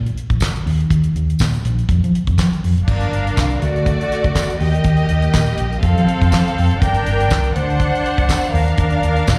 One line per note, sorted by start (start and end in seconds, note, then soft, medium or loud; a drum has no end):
0.06 closed hi-hat soft
0.18 closed hi-hat medium
0.30 0.38 A#1 medium
0.30 kick medium
0.30 closed hi-hat soft
0.40 kick loud
0.40 snare loud
0.40 clap medium
0.40 tambourine medium
0.56 closed hi-hat soft
0.66 0.83 D#2 loud
0.66 open hi-hat medium
0.81 closed hi-hat soft
0.90 1.08 D#2 medium
0.90 kick loud
0.90 closed hi-hat medium
1.04 closed hi-hat soft
1.16 1.33 D#2 medium
1.16 closed hi-hat medium
1.30 closed hi-hat soft
1.39 1.57 A#2 medium
1.39 kick loud
1.39 snare loud
1.39 clap medium
1.39 tambourine medium
1.54 closed hi-hat medium
1.65 1.82 A#1 medium
1.65 closed hi-hat medium
1.79 closed hi-hat soft
1.89 1.99 F2 loud
1.89 kick loud
1.89 closed hi-hat medium
2.04 2.11 F3 loud
2.04 closed hi-hat soft
2.15 closed hi-hat medium
2.27 2.35 F2 medium
2.27 kick medium
2.27 closed hi-hat soft
2.38 2.48 F3 loud
2.38 kick medium
2.38 snare medium
2.38 clap medium
2.38 tambourine medium
2.53 closed hi-hat soft
2.64 2.73 F2 medium
2.64 open hi-hat medium
2.77 2.84 F#1 medium
2.77 closed hi-hat soft
2.88 3.05 G1 medium
2.88 3.60 D4 medium
2.88 3.60 A#4 medium
2.88 3.60 F5 medium
2.88 kick loud
2.88 crash medium
3.01 closed hi-hat soft
3.12 3.30 G1 medium
3.12 closed hi-hat medium
3.27 closed hi-hat soft
3.37 3.54 C2 medium
3.37 kick loud
3.37 snare loud
3.37 clap medium
3.37 tambourine medium
3.51 closed hi-hat soft
3.62 3.96 D2 medium
3.62 4.59 A3 medium
3.62 4.59 F#4 medium
3.62 4.59 D5 loud
3.62 closed hi-hat medium
3.76 closed hi-hat soft
3.86 kick loud
3.86 closed hi-hat medium
4.01 closed hi-hat soft
4.12 snare soft
4.12 closed hi-hat medium
4.24 4.32 D2 medium
4.24 kick loud
4.24 closed hi-hat soft
4.35 kick medium
4.35 snare loud
4.35 clap medium
4.35 tambourine medium
4.50 closed hi-hat soft
4.60 4.78 D#2 medium
4.60 5.81 A#3 medium
4.60 5.81 G4 medium
4.60 5.81 D#5 medium
4.60 open hi-hat medium
4.75 closed hi-hat soft
4.84 5.02 D#2 loud
4.84 kick loud
4.84 closed hi-hat medium
4.97 closed hi-hat soft
5.09 5.28 D#2 loud
5.09 closed hi-hat medium
5.22 closed hi-hat soft
5.34 5.51 A#2 medium
5.34 kick loud
5.34 snare loud
5.34 clap medium
5.34 tambourine medium
5.47 closed hi-hat medium
5.58 5.77 A#1 medium
5.58 closed hi-hat medium
5.73 closed hi-hat soft
5.82 5.93 F2 loud
5.82 6.79 C4 medium
5.82 6.79 A4 medium
5.82 6.79 F5 medium
5.82 kick loud
5.82 closed hi-hat medium
5.98 6.06 F3 loud
5.98 closed hi-hat soft
6.09 closed hi-hat medium
6.22 6.29 F2 medium
6.22 kick loud
6.22 closed hi-hat soft
6.32 6.42 F3 medium
6.32 kick medium
6.32 snare loud
6.32 clap medium
6.32 tambourine medium
6.48 closed hi-hat soft
6.58 6.68 F2 medium
6.58 open hi-hat medium
6.71 6.79 F#1 medium
6.71 closed hi-hat soft
6.82 6.99 G1 loud
6.82 7.54 D4 medium
6.82 7.54 A#4 medium
6.82 7.54 G5 medium
6.82 kick loud
6.82 closed hi-hat medium
6.95 closed hi-hat medium
7.06 7.31 G1 medium
7.06 closed hi-hat medium
7.20 closed hi-hat medium
7.30 7.48 C2 medium
7.30 kick loud
7.30 snare loud
7.30 clap medium
7.30 tambourine medium
7.44 closed hi-hat medium
7.56 7.90 D2 loud
7.56 8.52 D4 medium
7.56 8.52 C5 medium
7.56 8.52 F#5 loud
7.56 closed hi-hat medium
7.70 closed hi-hat soft
7.80 kick loud
7.80 closed hi-hat medium
7.95 closed hi-hat soft
8.06 closed hi-hat medium
8.18 8.26 C2 medium
8.18 kick loud
8.18 closed hi-hat soft
8.29 kick medium
8.29 snare loud
8.29 clap medium
8.29 tambourine medium
8.44 closed hi-hat medium
8.53 8.71 D#2 loud
8.53 9.39 D4 medium
8.53 9.39 A#4 medium
8.53 9.39 F5 medium
8.53 open hi-hat medium
8.68 closed hi-hat soft
8.78 8.95 D#2 loud
8.78 kick loud
8.78 closed hi-hat medium
8.90 closed hi-hat soft
9.03 9.21 D#2 loud
9.03 closed hi-hat medium
9.17 closed hi-hat soft
9.27 9.39 A#2 medium
9.27 kick loud
9.27 snare loud
9.27 clap loud
9.27 tambourine medium